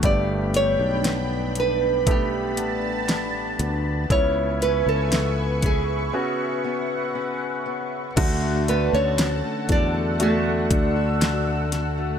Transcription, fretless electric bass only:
X:1
M:4/4
L:1/16
Q:1/4=59
K:Dlyd
V:1 name="Fretless electric bass" clef=bass
=G,,,3 B,,,6- B,,, A,,,4 D,,2 | C,,3 C,,4- C,, z8 | D,,3 D,,2 z E,,4 D,,6 |]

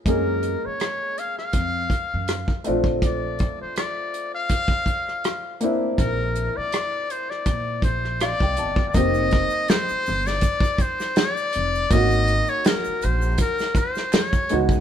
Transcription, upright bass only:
X:1
M:4/4
L:1/16
Q:"Swing 16ths" 1/4=81
K:Bb
V:1 name="Upright bass" clef=bass
_G,,3 z4 z F,,2 z G,,2 z B,,,2- | B,,,3 z12 z | B,,,3 z4 z B,,2 B,,,3 C,, G,,,2 | [K:Fdor] F,,,3 z3 G,,,2 z6 F,,,2 |
A,,,3 z3 B,,,2 z6 _D,,2 |]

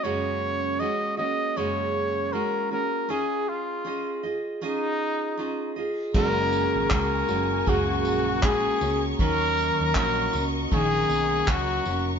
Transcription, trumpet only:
X:1
M:4/4
L:1/16
Q:"Swing 16ths" 1/4=79
K:F#
V:1 name="Trumpet"
c4 d2 d2 c4 A2 A2 | G2 E4 z2 D6 z2 | A4 A4 F4 G3 z | A4 A2 z2 G4 F3 z |]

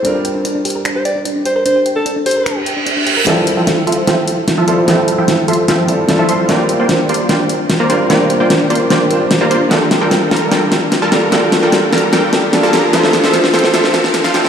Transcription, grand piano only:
X:1
M:4/4
L:1/8
Q:1/4=149
K:F
V:1 name="Grand piano"
[G,CDFB]8- | [G,CDFB]8 | [G,CEFA]6- [G,CEFA] [G,CEFA] | [G,CEFA]4- [G,CEFA] [G,CEFA] [G,CEFA]2 |
[G,CDFB]6- [G,CDFB] [G,CDFB] | [G,CDFB]4- [G,CDFB] [G,CDFc]3 | [G,B,DFA]6- [G,B,DFA] [G,B,DFA] | [G,B,DFA]4- [G,B,DFA] [G,B,DFA] [G,B,DFA]2 |
[F,CDEA]6- [F,CDEA] [F,CDEA] |]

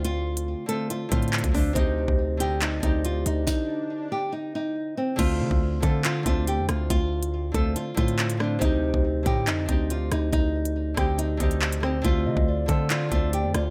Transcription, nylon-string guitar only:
X:1
M:4/4
L:1/8
Q:1/4=140
K:Dphr
V:1 name="Nylon-string guitar"
F3 A F F2 D | E3 G E E F E | E3 G E E2 C | F3 A F F G F |
F3 A F F2 D | E3 G E E F E | E3 G E E2 C | F3 A F F G F |]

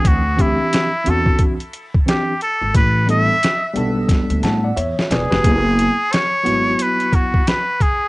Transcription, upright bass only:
X:1
M:4/4
L:1/16
Q:"Swing 16ths" 1/4=89
K:F#phr
V:1 name="Upright bass" clef=bass
D,,4 z2 E,,2 z6 z ^G,,, | A,,,4 z2 B,,,2 z D,, A,,2 E,, z E,,, ^E,,, | F,,,3 z3 ^G,,,2 z8 |]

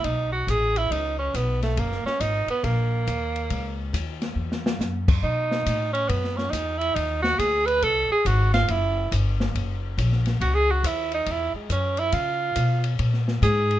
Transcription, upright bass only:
X:1
M:4/4
L:1/8
Q:"Swing" 1/4=139
K:F#mix
V:1 name="Upright bass" clef=bass
B,,,2 =A,,,2 C,,2 B,,,2 | F,,, z G,,, z A,,,2 D,,2 | C,,2 D,,2 E,,2 F,,2 | B,,2 =A,,2 F,,2 E,,2 |
D,,2 =D,,2 ^B,,, z G,,,2 | F,,,2 =G,,,2 F,,,2 A,,,2 | C,,2 D,,2 E,, z F,,2 | C,2 B,,2 A,,2 G,,2 |]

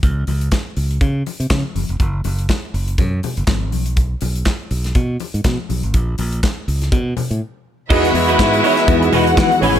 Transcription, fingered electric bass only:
X:1
M:4/4
L:1/16
Q:"Swing 16ths" 1/4=122
K:Gblyd
V:1 name="Fingered electric bass" clef=bass
D,,2 D,,2 z2 D,,2 D,2 z C, D, z G,,, F,,, | G,,,2 G,,,2 z2 G,,,2 G,,2 z G,,, A,,,2 _C,,2- | _C,,2 C,,2 z2 C,,2 _C,2 z A,, C, z C,, A,,, | B,,,2 B,,,2 z2 D,,2 =B,,2 z =A,, z4 |
[K:E] E,,2 E,,2 G,,2 z2 E,,2 E,,2 E, z A,,, G,,, |]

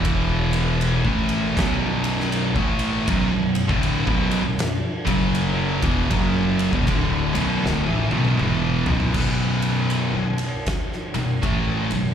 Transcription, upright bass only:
X:1
M:4/4
L:1/16
Q:"Swing" 1/4=79
K:Bm
V:1 name="Upright bass" clef=bass
E,,,4- E,,, A,,,3 B,,,4- B,,, A,,,3 | B,,, B,,,2 D,,,2 B,,,2 B,,,2 z F,,,4 E,,,2 | F,,,3 E,,, D,,,2 B,,,2 D,,, A,,, B,,,2 E,,,2 B,,,2 | B,,,4- B,,, B,,,2 z3 B,,,2 A,,,2 B,,,2 |]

